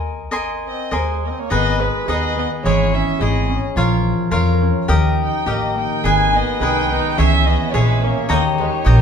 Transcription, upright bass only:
0.00 0.32 D#2 medium
0.32 0.71 G#1 medium
0.92 1.30 D#2 medium
1.51 1.88 G#1 medium
2.08 2.45 D#2 medium
2.65 3.01 G#1 medium
3.21 3.57 G#1 loud
3.76 4.12 A#1 loud
4.32 4.69 F2 loud
4.89 5.26 D#2 medium
5.46 5.84 A1 medium
6.04 6.41 G#1 medium
6.60 6.97 C2 medium
7.19 7.55 C#2 medium
7.74 8.10 A#1 loud
8.30 8.66 D#2 medium
8.86 9.02 A#1 loud

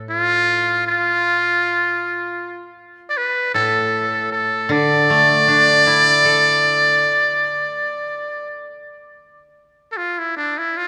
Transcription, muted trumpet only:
0.10 0.83 F4 medium
0.87 2.75 F4 medium
3.10 3.19 D5 medium
3.17 3.54 B4 medium
3.54 4.28 A4 medium
4.32 4.73 A4 medium
4.72 8.71 D5 loud
9.92 9.99 A4 medium
9.97 10.20 F4 medium
10.19 10.36 E4 medium
10.37 10.59 D4 medium
10.58 10.78 E4 medium
10.77 10.88 F4 medium

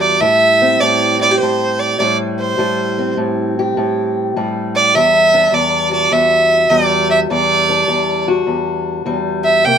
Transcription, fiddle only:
0.00 0.23 D5 medium
0.21 0.82 E5 loud
0.80 1.20 D5 medium
1.21 1.39 D5 medium
1.39 1.81 C5 medium
1.79 1.98 D5 medium
1.99 2.17 D5 medium
2.39 3.14 C5 medium
4.76 4.97 D5 loud
4.96 5.55 E5 loud
5.54 5.92 D5 medium
5.93 6.14 D5 medium
6.12 6.72 E5 medium
6.70 7.09 D5 medium
7.11 7.19 E5 loud
7.32 8.24 D5 medium
9.44 9.66 E5 medium
9.65 9.78 G5 loud

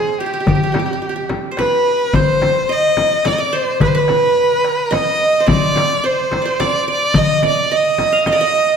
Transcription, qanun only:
0.00 0.26 G#4 medium
0.00 0.43 C5 medium
0.20 0.26 G4 medium
0.26 0.33 G4 soft
0.34 0.40 G4 soft
0.40 0.48 G4 soft
0.48 0.55 G4 soft
0.55 0.63 G4 soft
0.63 0.72 G4 soft
0.72 0.79 G4 soft
0.79 0.85 G4 soft
0.86 0.93 G4 soft
0.93 1.01 G4 soft
1.02 1.09 G4 soft
1.09 1.15 G4 soft
1.16 2.41 G4 soft
1.51 1.65 C5 soft
1.59 2.21 B4 medium
2.15 3.21 C5 medium
2.69 3.31 D#5 medium
3.25 3.38 D5 medium
3.38 4.37 D5 medium
3.53 3.87 C5 medium
3.81 3.94 B4 medium
3.95 5.04 B4 medium
4.91 5.52 D#5 medium
5.40 6.03 C5 medium
5.46 6.41 D5 medium
6.04 6.45 C5 medium
6.42 7.51 C5 medium
6.42 6.59 D5 medium
6.60 6.87 D5 medium
6.88 7.22 D5 medium
7.16 7.49 D#5 medium
7.43 7.77 D5 medium
7.71 8.27 D#5 medium
8.12 8.77 F5 medium
8.27 8.39 D#5 medium
8.33 8.47 D5 medium
8.41 8.77 D#5 medium

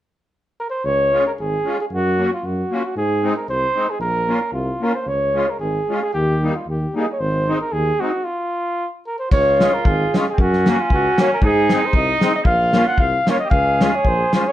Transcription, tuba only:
0.84 1.19 C#2 medium
1.39 1.57 G#1 medium
1.92 2.26 F#2 medium
2.44 2.62 F#2 medium
2.96 3.29 G#2 medium
3.48 3.66 C2 medium
3.99 4.33 A#1 medium
4.52 4.71 C2 medium
5.06 5.41 C#2 medium
5.60 5.79 G#1 medium
6.14 6.49 D#2 medium
6.67 6.85 D#2 medium
7.19 7.53 G#1 medium
7.72 7.90 D#2 medium
9.32 9.67 C#2 medium
9.85 10.04 G#1 medium
10.38 10.72 F#2 loud
10.90 11.09 C#2 medium
11.42 11.75 G#2 loud
11.93 12.12 C2 medium
12.45 12.79 A#1 medium
12.98 13.17 C2 medium
13.52 13.86 C#2 medium
14.05 14.23 A#1 medium

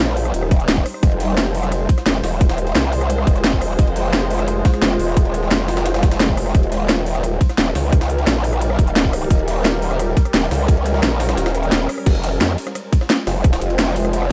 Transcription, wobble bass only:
0.00 0.33 A#1 loud
0.34 0.67 D#1 loud
0.68 0.84 D#1 medium
1.03 1.88 F1 loud
2.06 2.22 F1 loud
2.24 2.74 D#1 loud
2.75 3.26 C2 loud
3.27 3.77 F1 loud
3.79 4.64 F1 loud
4.82 4.98 F1 loud
4.99 5.50 D#1 loud
5.51 6.53 F1 loud
6.55 7.39 D#1 loud
7.58 7.74 D#1 loud
7.75 8.26 C#2 loud
8.27 8.77 A#1 loud
8.79 9.29 D#1 loud
9.30 10.15 D#1 loud
10.34 10.50 D#1 loud
10.51 11.02 C#2 loud
11.03 11.36 A#1 loud
11.37 11.70 D#1 loud
11.72 11.88 D#1 loud
12.06 12.39 F1 loud
12.41 12.57 F2 loud
13.27 13.60 F1 loud
13.62 14.32 F1 loud

